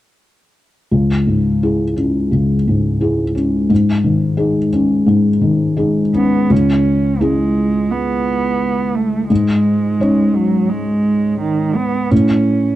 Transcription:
0.91 C#2
1.27 G#2
1.63 E4 G#4
1.97 C#4
2.32 C#2
2.68 G#2
3.01 E4 G#4
3.35 C#4
3.70 G#2
4.04 D#3
4.37 D#4 G#4
4.73 C#4
5.06 G#2
5.41 D#3
5.77 D#4 G#4
6.14 B3 C#4
6.50 C#2 C#4
7.21 G#3 C#4 E4 G#4
7.91 B3
8.95 A3
9.29 G#2 G#3
10.00 C#4 D#4 C#5
10.36 F#3
10.70 G#3
11.40 D#3
11.75 B3
12.11 A2 C#4

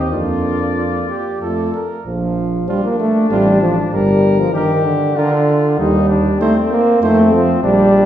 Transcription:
Already playing: D#2 C4 D#4 G4
0.12 F2 A#3 D4 F4 D5
0.77 F4
1.09 G4
1.41 F2 A3 F4 A4
1.74 A#4
2.06 A#1 F3
2.69 G3 D4 F4
2.84 A#3
3.00 A3
3.31 A1 G3 C4 F4
3.62 F3
3.93 G1 G3 A#4
4.40 F3
4.54 D#3 D4 G4 A#4
4.85 D3
5.16 D3 D4 F4 A#4
5.79 D#2 G3 D#4
6.09 D4
6.41 A3 C4 D#4 C5
6.71 A#3
7.02 F2 A3 C4 D#4 C5
7.33 F3
7.63 A#1 G3 D4

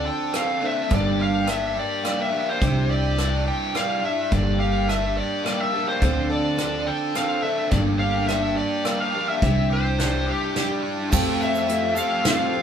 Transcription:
Already playing: D3 F3 C4 D4 A4
0.05 A4 G5
0.33 F3 C4 D4 A4 F5, cross-stick, closed hi-hat
0.61 C4 D4 A4
0.66 E5
0.88 G1 G2 D3 G3 A#3 D4 G4, kick, closed hi-hat
0.94 D5
1.19 G4 F5
1.46 G3 A#3 D4 G4 E5, cross-stick, closed hi-hat
1.74 G3 A#3 D4 G4
1.79 D5
2.03 G3 A#3 D4 G4 D5, cross-stick, closed hi-hat
2.22 E5
2.31 G3 A#3 D4 G4
2.49 C5
2.61 C2 C3 G3 D4 E4 G4, kick, closed hi-hat
2.89 G4 D5
3.17 G3 D4 E4 G4, cross-stick, closed hi-hat
3.46 G4 G5
3.75 G3 D4 E4 F5, cross-stick, closed hi-hat
3.79 G4
4.02 D4 E4 G4 E5
4.07 D4
4.31 G1 G2 D3 G3 A#3 D4 G4 D5, kick, closed hi-hat
4.59 G4 F5
4.88 G3 A#3 D4 G4 E5, cross-stick, closed hi-hat
5.17 G4 D5
5.44 G3 A#3 D4 G4 D5, cross-stick, closed hi-hat
5.60 E5
5.73 G3 A#3 D4 G4
5.88 C5
6.01 D2 D3 F3 C4 D4 A4, kick, closed hi-hat
6.30 A4 D5
6.57 F3 C4 D4 A4, cross-stick, closed hi-hat
6.87 A4 G5
7.14 F3 C4 D4 A4 F5, cross-stick, closed hi-hat
7.42 C4 D4 A4 E5
7.71 G1 G2 D3 G3 A#3 D4 G4 D5, kick, closed hi-hat
7.99 G4 F5
8.27 G3 A#3 E5, cross-stick, closed hi-hat
8.31 D4 G4
8.57 G4 D5
8.85 G3 A#3 D4 G4 D5, cross-stick, closed hi-hat
9.00 F5
9.14 G3 A#3 D4 G4
9.29 E5
9.42 C2 C3 G3 D4 E4 G4, kick, closed hi-hat
9.70 G4 C5
9.99 G3 D4 E4 G4, snare, closed hi-hat
10.27 G4
10.55 G3 D4 E4 G4, snare, closed hi-hat
10.83 D4
11.10 F2 F3 A3 C4 F4 G4 A4 G5, kick, crash, shaker
11.14 G4
11.41 E5, shaker
11.55 shaker
11.68 A3 C4 F4 G4 A4, closed hi-hat, shaker
11.95 F3 C4 F4 G4 A4 F5, shaker
12.00 C4
12.25 A3 C4 F4 G4 C5 F5, snare, closed hi-hat
12.29 G4
12.53 C4 F4 G4

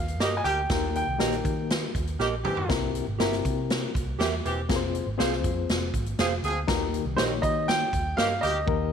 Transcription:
Already playing: D#2 F5
0.08 closed hi-hat
0.19 G2 D#3 A#3 G4 A#4 D#5, snare, closed hi-hat
0.37 G#5
0.44 D2 D#3 A#3 G4 G5, closed hi-hat
0.69 D#2 D#3 A#3 D#4 G4 A#4, kick, snare, closed hi-hat
0.95 G5, closed hi-hat
1.07 C2
1.18 A#1 A#3 D#4 G4 A#4 D#5, snare, closed hi-hat
1.32 closed hi-hat
1.44 D#3, kick, closed hi-hat
1.70 snare, closed hi-hat
1.95 D#2, kick, closed hi-hat
2.07 closed hi-hat
2.19 A#1 D#3 A#3 G4 A#4 D#5, snare
2.44 D#3 E3 C4 G4, mid tom
2.57 floor tom
2.69 C2 C3 C4 E4 G4 A#4, kick, snare, closed hi-hat
2.95 closed hi-hat
3.08 G#1
3.19 G1 C4 E4 G4 A#4 E5, snare, closed hi-hat
3.33 snare, closed hi-hat
3.45 C3, kick, closed hi-hat
3.70 snare, closed hi-hat
3.95 C2, kick, closed hi-hat
4.19 E2 E3 C4 G4 A#4 E5, snare, closed hi-hat
4.45 E1 E3 C4 G4, closed hi-hat
4.69 F1 C4 F4 G#4 A#4, kick, snare, closed hi-hat
4.76 C5
4.95 closed hi-hat
5.07 G#1
5.18 C2 C4 F4 G#4 C5 F5, snare, closed hi-hat
5.32 snare
5.44 F2, kick, closed hi-hat
5.69 F1, snare, closed hi-hat
5.94 G#1, kick, closed hi-hat
6.06 closed hi-hat
6.19 F1 F3 C4 G#4 C5 F5, snare, closed hi-hat
6.43 D2 F3 C4 G#4, closed hi-hat
6.68 D#2 D#3 A#3 D#4 G4 A#4, kick, snare, closed hi-hat
6.94 closed hi-hat
7.05 C2
7.16 A#1 A#3 D#4 G4 A#4 C5 C#5 D#5, snare, closed hi-hat
7.42 D#3 D#5, kick, closed hi-hat
7.68 G5, snare, closed hi-hat
7.93 D#2, kick, closed hi-hat
8.17 G2 D#3 A#3 G4 A#4 D#5 F5, snare, closed hi-hat
8.41 D2 D#3 A#3 G4 D#5, closed hi-hat
8.66 D#2 D#3 A#3 D#4 G4 A#4, kick

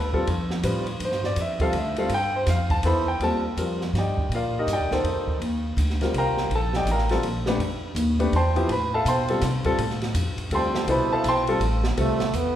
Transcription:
Already playing: D2
0.13 G3 C4 F4 A4, kick
0.27 F2, ride
0.50 snare
0.63 A2 G3 C4 F4 B4, hi-hat pedal, ride
0.87 ride
1.00 G2, ride
1.05 C5
1.12 snare
1.24 D5, snare
1.36 F2, hi-hat pedal, ride
1.41 E5
1.60 G3 C4 F4 A4 F5, kick, ride
1.73 D2, ride
1.78 E5
1.96 G3 C4 F4 A4 F5, ride
2.09 G2, ride
2.14 G5
2.36 C5
2.46 F2 F5, snare, hi-hat pedal, ride
2.70 A5, kick, ride
2.83 E2 B3 E4 A4 C5 B5, ride
3.08 G5
3.19 D#2 G3 C4 F4 A4, ride
3.24 A5
3.57 F2 G3 C4 F4 A#4, hi-hat pedal, ride
3.81 snare
3.93 G2, snare, ride
3.98 G4 D5 D#5 G5
4.18 kick
4.29 A#2, ride
4.35 F4 A#4 D5 F5
4.59 D#4 G4 A#4 D#5
4.67 G2, hi-hat pedal, ride
4.73 G4 D5 D#5 G5
4.79 D#2
4.91 D2 A#3 D#4 A4 C5, snare
5.04 F2, ride
5.28 kick
5.40 D#2, ride
5.77 D2, hi-hat pedal, ride
5.90 snare
6.01 G3 C4 F4 A#4, snare, ride
6.14 C2, ride
6.18 A#4 F5 G5 A#5
6.37 snare
6.50 A#1, ride
6.55 A4 A5
6.73 G4 D5 D#5 G5, snare
6.85 A1, hi-hat pedal, ride
6.91 A#4 F5 G5 A#5
6.98 snare
7.09 G3 C4 F4 A4, snare, ride
7.23 A#1, ride
7.46 A3 D4 G4 B4, snare
7.58 F2, ride
7.95 D#2, hi-hat pedal, ride
8.19 A3 D4 G4 B4, ride
8.32 E2 A5 C6, ride
8.36 C5 G5
8.56 F3 B3 E4 G4, ride
8.69 A2 B4 B5, ride
8.94 A4 E5 F5 A5
9.05 B2 C5 G5 C6, hi-hat pedal, ride
9.09 A5
9.28 G3 C4 F4 A4, ride
9.41 C3, snare, hi-hat pedal, ride
9.64 G3 C4 F4 A4, kick, ride
9.78 A2, ride
9.90 snare
10.02 snare, ride
10.14 F2, hi-hat pedal, ride
10.37 muted upright bass stroke, ride
10.50 D2 G3 C4 F4 A4, ride
10.55 C5 G5 A5 C6
10.75 snare
10.87 C2 B2 E4 A4 C5 B5, ride
10.91 B4
11.11 A4 E5 F5 A5, muted upright bass stroke
11.24 B1, hi-hat pedal, ride
11.28 C5 G5 A5 C6
11.47 G3 C4 F4 A4, ride
11.60 A1, ride
11.84 snare
11.97 C2 G3 A3 C4 F4 A4, ride
12.20 snare, ride
12.33 E2 B3, hi-hat pedal, ride

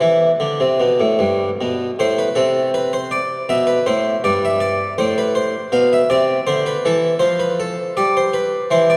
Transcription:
Already playing: G4 B4
0.01 E3
0.40 D3
0.60 C3
0.80 B2
1.00 A2
1.19 G2
1.61 B2
1.99 A2 C5
2.19 B4
2.35 C3 A4
2.74 B4
2.93 C5
3.11 D5
3.49 B2 E5
3.67 B4
3.86 A2 C5
4.24 G2 D5
4.45 E5
4.60 D5
4.98 A2 C5
5.18 B4
5.35 C5
5.72 B2 F5
5.93 E5
6.10 C3 D5
6.47 D3 C5
6.66 B4
6.85 E3 A4
7.19 F3 C5
7.40 B4
7.60 A4
7.97 G3 D5
8.17 C5
8.33 B4
8.71 E3 C5
8.90 D5

